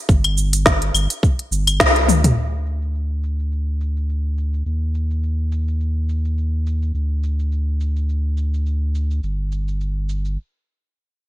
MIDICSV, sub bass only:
0, 0, Header, 1, 2, 480
1, 0, Start_track
1, 0, Tempo, 571429
1, 76, Time_signature, 4, 2, 24, 8
1, 9483, End_track
2, 0, Start_track
2, 0, Title_t, "Sub bass"
2, 0, Program_c, 0, 38
2, 74, Note_on_c, 0, 31, 99
2, 765, Note_off_c, 0, 31, 0
2, 789, Note_on_c, 0, 31, 106
2, 903, Note_off_c, 0, 31, 0
2, 1270, Note_on_c, 0, 31, 84
2, 1510, Note_off_c, 0, 31, 0
2, 1515, Note_on_c, 0, 36, 92
2, 1747, Note_on_c, 0, 38, 94
2, 1759, Note_off_c, 0, 36, 0
2, 1953, Note_off_c, 0, 38, 0
2, 1988, Note_on_c, 0, 38, 82
2, 3891, Note_off_c, 0, 38, 0
2, 3914, Note_on_c, 0, 39, 83
2, 5813, Note_off_c, 0, 39, 0
2, 5831, Note_on_c, 0, 38, 82
2, 7732, Note_off_c, 0, 38, 0
2, 7755, Note_on_c, 0, 31, 88
2, 8715, Note_off_c, 0, 31, 0
2, 9483, End_track
0, 0, End_of_file